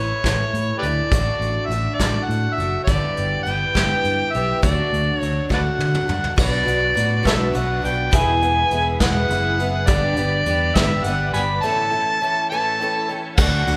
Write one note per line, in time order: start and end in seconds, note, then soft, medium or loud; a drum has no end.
0.00 0.12 A1 medium
0.00 0.25 E3 medium
0.00 0.25 A3 medium
0.00 0.25 C#4 medium
0.00 0.24 E4 medium
0.00 0.75 C#5 loud
0.24 0.42 A1 medium
0.24 0.84 A2 medium
0.24 0.84 E3 medium
0.24 0.84 A3 medium
0.24 0.84 C#4 medium
0.24 0.82 E4 medium
0.24 kick medium
0.24 snare loud
0.24 closed hi-hat medium
0.54 0.71 A2 medium
0.54 closed hi-hat medium
0.78 0.85 G4 medium
0.78 0.87 B4 medium
0.78 1.68 D5 medium
0.83 1.00 D2 medium
0.83 1.11 A3 soft
0.83 1.13 C#4 soft
0.83 1.12 E4 medium
0.83 closed hi-hat medium
1.12 1.30 A1 medium
1.12 1.70 A2 medium
1.12 1.69 D3 medium
1.12 1.71 A3 medium
1.12 1.73 D4 medium
1.12 1.71 F#4 medium
1.12 kick loud
1.12 closed hi-hat medium
1.40 1.58 A1 medium
1.40 closed hi-hat medium
1.66 1.87 A1 medium
1.66 1.96 E5 medium
1.70 2.00 D3 medium
1.70 2.00 A3 medium
1.70 2.00 D4 medium
1.70 1.98 F#4 medium
1.70 closed hi-hat medium
1.94 2.25 D5 medium
2.00 2.17 A1 medium
2.00 2.59 A2 soft
2.00 2.59 D3 medium
2.00 2.59 A3 medium
2.00 2.60 D4 medium
2.00 2.57 F#4 medium
2.00 kick medium
2.00 snare loud
2.00 closed hi-hat medium
2.23 2.54 F#5 medium
2.29 2.46 A2 medium
2.29 closed hi-hat medium
2.53 2.83 E5 medium
2.58 2.76 F#1 medium
2.58 2.88 D4 soft
2.58 2.87 F#4 soft
2.58 closed hi-hat medium
2.62 2.89 A3 soft
2.84 3.05 G1 medium
2.84 3.45 G2 medium
2.84 3.46 D3 medium
2.84 3.40 D5 medium
2.84 kick loud
2.88 3.44 E3 medium
2.88 3.46 G3 medium
2.88 3.46 B3 medium
2.88 3.46 G4 medium
2.88 closed hi-hat medium
3.17 3.35 G1 medium
3.17 closed hi-hat medium
3.43 3.64 G1 medium
3.43 3.75 E3 medium
3.43 3.74 G3 medium
3.43 4.33 G5 loud
3.43 closed hi-hat medium
3.47 3.74 B3 medium
3.47 3.73 G4 medium
3.74 3.93 G1 medium
3.74 4.34 G2 medium
3.74 4.34 D3 medium
3.74 4.34 E3 medium
3.74 4.33 G3 medium
3.74 4.33 B3 medium
3.74 4.33 G4 medium
3.74 kick medium
3.74 snare loud
3.74 closed hi-hat medium
4.04 4.22 G2 medium
4.04 closed hi-hat medium
4.32 4.52 B1 medium
4.32 4.63 B3 soft
4.32 4.63 G4 soft
4.32 4.62 E5 medium
4.32 closed hi-hat medium
4.37 4.62 E3 soft
4.37 4.63 G3 soft
4.62 4.81 D2 medium
4.62 5.21 D3 medium
4.62 5.20 F#3 medium
4.62 5.21 A3 medium
4.62 5.21 D4 medium
4.62 5.22 F#4 medium
4.62 5.18 D5 medium
4.62 kick loud
4.62 closed hi-hat medium
4.93 5.10 D2 medium
4.93 closed hi-hat medium
5.18 5.50 F#3 medium
5.18 5.46 C#5 medium
5.22 5.40 D2 medium
5.22 5.49 A3 medium
5.22 5.49 D4 medium
5.22 5.48 F#4 medium
5.22 closed hi-hat medium
5.49 5.68 D2 medium
5.49 6.09 D3 medium
5.49 6.09 F#3 medium
5.49 6.09 A3 medium
5.49 6.09 D4 medium
5.49 6.07 F#4 medium
5.49 5.60 B4 medium
5.49 5.62 D5 medium
5.49 6.35 F#5 medium
5.49 kick medium
5.49 snare medium
5.79 5.97 D3 medium
5.79 high tom medium
5.95 mid tom medium
6.08 6.27 G2 medium
6.08 6.37 A3 soft
6.08 6.36 D4 medium
6.08 6.37 F#4 medium
6.08 mid tom medium
6.24 floor tom medium
6.36 6.63 B1 medium
6.36 6.66 B2 medium
6.36 6.66 F#3 medium
6.36 8.12 F#3 medium
6.36 6.67 B3 medium
6.36 6.66 D4 medium
6.36 8.12 D4 medium
6.36 6.62 F#4 medium
6.36 6.64 F#4 medium
6.36 6.62 B4 medium
6.36 11.60 B4 medium
6.36 6.62 D5 medium
6.36 kick loud
6.36 crash loud
6.41 7.23 D5 medium
6.65 6.92 B1 medium
6.65 6.94 B3 soft
6.65 6.95 D4 soft
6.65 6.95 F#4 soft
6.65 6.90 F#4 medium
6.65 6.90 B4 medium
6.65 6.91 D5 medium
6.65 closed hi-hat medium
6.95 7.21 A2 medium
6.95 7.24 F#3 medium
6.95 7.23 B3 medium
6.95 7.23 D4 medium
6.95 7.44 F#4 medium
6.95 7.22 F#4 medium
6.95 7.44 B4 medium
6.95 7.44 D5 medium
6.95 closed hi-hat medium
7.23 7.50 B1 medium
7.23 7.55 B2 medium
7.23 7.52 F#3 medium
7.23 7.54 B3 medium
7.23 7.54 D4 medium
7.23 7.53 F#4 medium
7.23 7.34 A4 medium
7.23 7.35 C#5 medium
7.23 7.57 E5 medium
7.23 kick medium
7.23 closed hi-hat medium
7.27 snare loud
7.53 7.80 B1 medium
7.53 7.83 F#3 medium
7.53 7.83 B3 medium
7.53 7.82 D4 medium
7.53 7.78 F#4 medium
7.53 7.81 F#4 medium
7.53 7.78 B4 medium
7.53 7.79 D5 medium
7.53 7.87 F#5 medium
7.53 closed hi-hat medium
7.82 8.09 B1 medium
7.82 8.11 B3 soft
7.82 8.12 D4 soft
7.82 8.12 F#4 medium
7.82 8.13 F#4 medium
7.82 8.12 B4 medium
7.82 8.13 D5 medium
7.82 closed hi-hat medium
7.86 8.17 G5 medium
8.11 8.63 E1 medium
8.11 8.41 E2 medium
8.11 8.41 B2 medium
8.11 8.42 E3 medium
8.11 9.86 G#3 medium
8.11 8.42 B3 medium
8.11 8.41 E4 medium
8.11 9.86 E4 medium
8.11 8.37 G#4 medium
8.11 8.40 G#4 medium
8.11 8.37 B4 medium
8.11 8.37 E5 medium
8.11 kick loud
8.11 closed hi-hat medium
8.16 8.84 G#5 loud
8.41 8.70 E3 soft
8.41 8.71 B3 soft
8.41 8.71 E4 medium
8.41 8.71 G#4 medium
8.41 8.66 G#4 medium
8.41 8.66 B4 medium
8.41 8.66 F#5 medium
8.41 closed hi-hat medium
8.71 8.96 E1 medium
8.71 9.00 E3 medium
8.71 9.00 B3 medium
8.71 9.00 E4 medium
8.71 9.20 G#4 medium
8.71 8.99 G#4 medium
8.71 9.20 B4 medium
8.71 9.20 E5 medium
8.71 closed hi-hat medium
9.00 9.26 E1 medium
9.00 9.31 E2 medium
9.00 9.31 B2 medium
9.00 9.27 E3 medium
9.00 9.29 B3 medium
9.00 9.30 E4 medium
9.00 9.29 G#4 medium
9.00 9.89 F#5 loud
9.00 kick medium
9.00 snare loud
9.00 closed hi-hat medium
9.29 9.88 F#1 loud
9.29 9.58 E3 medium
9.29 9.59 B3 medium
9.29 9.59 E4 medium
9.29 9.54 G#4 medium
9.29 9.58 G#4 medium
9.29 9.54 B4 medium
9.29 9.54 E5 medium
9.29 closed hi-hat medium
9.59 9.87 E3 soft
9.59 9.87 B3 soft
9.59 9.88 E4 medium
9.59 9.88 G#4 medium
9.59 9.87 B4 medium
9.59 9.89 E5 medium
9.59 closed hi-hat medium
9.87 10.13 G1 medium
9.87 10.17 G2 medium
9.87 10.17 D3 medium
9.87 10.17 G3 medium
9.87 11.63 G3 medium
9.87 10.17 B3 medium
9.87 10.16 D4 medium
9.87 11.63 D4 medium
9.87 10.12 G4 medium
9.87 10.15 G4 medium
9.87 10.12 B4 medium
9.87 10.77 D5 loud
9.87 10.12 D5 medium
9.87 kick loud
9.87 closed hi-hat loud
10.16 10.42 G1 loud
10.16 10.45 G3 soft
10.16 10.47 B3 soft
10.16 10.47 D4 medium
10.16 10.46 G4 medium
10.16 10.42 G4 medium
10.16 10.42 B4 medium
10.16 10.42 D5 medium
10.16 closed hi-hat medium
10.46 10.71 E2 medium
10.46 10.75 G3 medium
10.46 10.76 B3 medium
10.46 10.76 D4 medium
10.46 10.95 G4 medium
10.46 10.75 G4 medium
10.46 10.95 B4 medium
10.46 10.95 D5 medium
10.46 closed hi-hat medium
10.75 11.00 G1 medium
10.75 11.06 G2 medium
10.75 11.06 D3 medium
10.75 11.04 G3 medium
10.75 11.06 B3 medium
10.75 11.06 D4 medium
10.75 11.05 G4 medium
10.75 11.06 E5 loud
10.75 kick medium
10.75 snare loud
10.75 closed hi-hat loud
11.04 11.29 G1 medium
11.04 11.34 G3 medium
11.04 11.35 B3 medium
11.04 11.35 D4 medium
11.04 11.29 G4 medium
11.04 11.29 B4 medium
11.04 11.29 D5 medium
11.04 11.33 F#5 loud
11.04 closed hi-hat medium
11.09 11.33 G4 medium
11.33 11.59 G1 medium
11.33 11.64 B3 soft
11.33 11.64 D4 soft
11.33 11.63 G4 medium
11.33 11.63 B4 medium
11.33 11.63 D5 medium
11.33 11.42 F#5 medium
11.33 11.40 G#5 medium
11.33 11.64 B5 loud
11.33 closed hi-hat medium
11.38 11.63 G3 soft
11.62 11.92 A2 medium
11.62 11.93 E3 medium
11.62 13.38 E3 medium
11.62 11.93 A3 medium
11.62 11.92 C#4 medium
11.62 13.38 C#4 medium
11.62 11.87 A4 medium
11.62 11.90 A4 medium
11.62 11.87 C#5 medium
11.62 11.87 E5 medium
11.62 12.49 A5 loud
11.66 13.38 A4 medium
11.91 12.22 C#4 soft
11.91 12.16 A4 medium
11.91 12.21 A4 medium
11.91 12.16 C#5 medium
11.91 12.16 E5 medium
11.95 12.22 A3 soft
12.21 12.50 E3 medium
12.21 12.51 A3 medium
12.21 12.51 C#4 medium
12.21 12.70 A4 medium
12.21 12.51 A4 medium
12.21 12.70 C#5 medium
12.21 12.70 E5 medium
12.49 12.80 E3 medium
12.49 12.81 C#4 medium
12.49 12.80 A4 medium
12.49 13.12 A5 loud
12.54 12.82 A2 medium
12.54 12.81 A3 medium
12.78 13.10 E3 medium
12.78 13.09 C#4 medium
12.78 13.03 A4 medium
12.78 13.03 C#5 medium
12.78 13.04 G5 medium
12.82 13.10 A3 medium
12.82 13.08 A4 medium
13.08 13.39 C#4 medium
13.08 13.36 A4 medium
13.08 13.38 A4 medium
13.08 13.38 C#5 medium
13.08 13.38 G5 medium
13.12 13.38 A3 soft
13.37 13.63 D2 medium
13.37 13.77 D3 medium
13.37 13.77 A3 medium
13.37 13.77 D4 medium
13.37 13.62 F#4 medium
13.37 13.77 F#4 medium
13.37 13.62 A4 medium
13.37 13.62 D5 medium
13.37 13.77 F#5 loud
13.37 13.62 F#5 medium
13.37 kick loud
13.37 crash loud
13.41 13.77 F#3 medium
13.41 13.77 D4 medium
13.41 13.77 A4 medium
13.67 13.77 D2 loud
13.67 13.77 F#4 medium
13.67 13.77 A4 medium
13.67 13.77 D5 medium
13.67 13.77 F#5 medium
13.67 ride medium